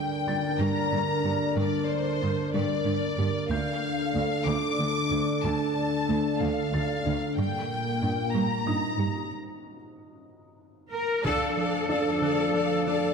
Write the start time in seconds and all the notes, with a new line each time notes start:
Already playing: D3 D4 A#4 D5 G5
0.28 G2 D4 A6
0.59 G2 G3 A#5
0.92 G2 D4
1.25 G2 G4
1.57 G2 G3 D5
1.89 C5
2.22 G2 D4
2.54 G2 G3 D5
2.86 G2 D4
3.18 G2 G4
3.50 D2 D3 D4 A4 D5 F5 G6
4.15 D2 A3
4.47 D2 D3 D6
4.80 D2 A3
5.12 D2 D4
5.44 D2 D3 A5
6.09 D2 A3
6.41 D2 D3 F5
6.73 D2 A3 A6
7.05 D2 D4
7.37 G2 A#2 G3 A#3 A#4 G5
8.02 G2 D4
8.34 G2 G3 A#5
8.66 G2 D4 D#4 D#6
8.98 G2 G4
10.92 A#4
11.25 D3 F3 D4 A4 D5 F5 A5, taiko
11.57 F3 D4 D5 F5 A5
11.89 F3 D4 D5 F5 A5
12.22 D3 D4 D5 F5 A5
12.54 F3 D4 D5 F5 A5
12.86 F3 D4 D5 F5 A5